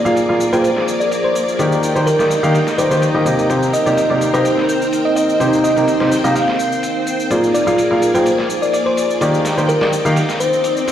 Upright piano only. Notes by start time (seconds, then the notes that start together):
0.05 A#2 A#3 F4 G#4 F5
0.29 A#2 A#3 F4 G#4 F5
0.53 A#2 A#3 F4 G#4 G5
1.59 D#3 A#3 D#4 G4 D5
1.96 D#3 A#3 D#4 G4 C5
2.19 D#3 A#3 D#4 G4 D5
2.43 D#3 A#3 D#4 G4 F5
2.78 D#3 A#3 D#4 G4 D5
2.91 D#3 A#3 D#4 G4 C5
3.15 D#3 A#3 D#4 G4 D#5
3.26 C3 A#3 D#4 G4 D#5
3.50 C3 A#3 D#4 G4 C5
3.86 C3 A#3 D#4 G4 D5
4.10 C3 A#3 D#4 G4 D5
4.34 C3 A#3 D#4 G4 D#5
5.40 C3 A#3 D#4 G4 C5
5.76 C3 A#3 D#4 G4 A#4
6.00 C3 A#3 D#4 G4 C5
6.24 C3 A#3 D#4 G4 D#5
7.31 A#2 A#3 F4 G#4 D5
7.67 A#2 A#3 F4 G#4 F5
7.91 A#2 A#3 F4 G#4 F5
8.15 A#2 A#3 F4 G#4 G5
9.21 D#3 A#3 D#4 G4 D5
9.57 D#3 A#3 D#4 G4 C5
9.81 D#3 A#3 D#4 G4 D5
10.05 D#3 A#3 D#4 G4 F5